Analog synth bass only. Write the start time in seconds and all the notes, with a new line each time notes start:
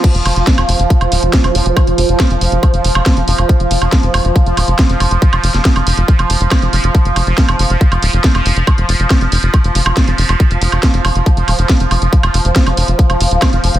0.15 F1
0.26 F1
0.36 F1
0.58 F1
0.69 F1
0.79 F1
1.01 F1
1.12 D#1
1.23 F1
1.44 F1
1.55 F1
1.66 F1
1.87 F1
1.98 F1
2.09 F1
2.31 F1
2.41 F1
2.52 F1
2.74 F1
2.84 F1
2.95 F1
3.17 F1
3.28 F1
3.38 F1
3.60 F1
3.71 F1
3.82 F1
4.03 F1
4.14 F1
4.25 F1
4.46 F1
4.57 D#1
4.68 F1
4.90 F1
5.00 F1
5.11 F1
5.33 F1
5.44 F1
5.54 F1
5.76 F1
5.87 F1
5.97 F1
6.19 F1
6.30 F1
6.41 F1
6.62 F1
6.73 F1
6.84 F1
7.05 F1
7.16 F1
7.27 F1
7.49 F1
7.59 F1
7.70 F1
7.92 F1
8.03 D#1
8.13 F1
8.35 F1
8.46 F1
8.56 F1
8.78 F1
8.89 F1
9.00 F1
9.21 F1
9.32 F1
9.43 F1
9.64 F1
9.75 F1
9.86 F1
10.08 F1
10.18 F1
10.29 F1
10.51 F1
10.62 F1
10.72 F1
10.94 F1
11.05 F1
11.15 F1
11.37 F1
11.48 D#1
11.59 F1
11.80 F1
11.91 F1
12.02 F1
12.23 F1
12.34 F1
12.45 F1
12.67 F1
12.77 F1
12.88 F1
13.10 F1
13.21 F1
13.31 D#1
13.53 F1
13.64 F1
13.74 F1